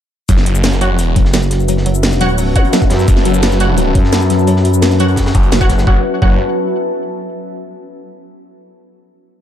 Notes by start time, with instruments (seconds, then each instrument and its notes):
0.29 detuned saw bass F#1, synth arpeggio sound F#3, synth drone F#3 C#4 F#4, ambient pad F#4, kick, closed hi-hat, shaker
0.38 ambient pad B4, snare
0.46 closed hi-hat
0.50 ambient pad E5
0.55 shaker
0.64 synth arpeggio sound F#3, snare, closed hi-hat, shaker
0.72 snare, shaker
0.81 synth arpeggio sound F#3, synth stab F#4 C#5 F#5, closed hi-hat
0.90 detuned saw bass F1
0.99 closed hi-hat, shaker
1.14 fm bass F#1, synth arpeggio sound F#3, ambient pad A5, kick, closed hi-hat
1.25 snare
1.34 synth arpeggio sound F#3, snare, closed hi-hat, shaker
1.42 shaker
1.51 snare, closed hi-hat
1.60 shaker
1.68 synth arpeggio sound F#3, closed hi-hat, shaker
1.77 snare
1.86 synth arpeggio sound F#3, closed hi-hat
1.95 shaker
2.03 snare, closed hi-hat, shaker
2.12 snare, closed hi-hat, shaker
2.16 fm bass E1
2.21 synth arpeggio sound F#3, synth stab F#4 C#5 F#5, closed hi-hat
2.29 closed hi-hat
2.38 fm bass D1, synth arpeggio sound F#3, closed hi-hat, open hi-hat, shaker
2.56 synth stab F#4 C#5 F#5, kick, closed hi-hat, zap
2.64 closed hi-hat
2.73 synth arpeggio sound F#3, snare, closed hi-hat, shaker
2.82 kick, shaker
2.90 fm bass F#2, synth arpeggio sound F#3, snare, closed hi-hat
2.99 snare, shaker
3.08 detuned saw bass F#1, kick, closed hi-hat, shaker
3.17 snare
3.25 synth arpeggio sound F#3, closed hi-hat
3.34 shaker
3.43 synth arpeggio sound F#3, snare, closed hi-hat, shaker
3.51 snare, shaker
3.60 synth stab F#4 C#5 F#5, closed hi-hat
3.78 synth arpeggio sound F#3, closed hi-hat, shaker
3.95 fm bass F#2, synth arpeggio sound F#3, kick, closed hi-hat
4.04 snare
4.12 snare, closed hi-hat, shaker
4.21 shaker
4.30 synth arpeggio sound F#3, snare, closed hi-hat
4.39 shaker
4.47 synth arpeggio sound F#3, closed hi-hat, shaker
4.56 snare
4.65 closed hi-hat
4.74 shaker
4.82 synth arpeggio sound F#3, snare, closed hi-hat, shaker
4.91 snare, closed hi-hat, shaker
4.99 synth arpeggio sound F#3, synth stab F#4 C#5 F#5, closed hi-hat
5.08 closed hi-hat
5.16 kick, snare, closed hi-hat, shaker
5.26 snare, closed hi-hat
5.35 detuned saw bass F#1, synth arpeggio sound F#3, kick, closed hi-hat
5.43 closed hi-hat
5.52 fm bass F#1, synth arpeggio sound F#3, snare, closed hi-hat, shaker
5.61 synth stab F#4 C#5 F#5, kick, shaker
5.69 kick, snare, closed hi-hat
5.78 snare, shaker
5.87 detuned saw bass F#1, synth arpeggio sound F#3, synth stab F#4 C#5 F#5, ambient pad F#4, kick
5.92 ambient pad B4
5.98 ambient pad E5
6.03 ambient pad A5
6.22 detuned saw bass F#1, synth arpeggio sound F#3, synth stab F#4 C#5 F#5, kick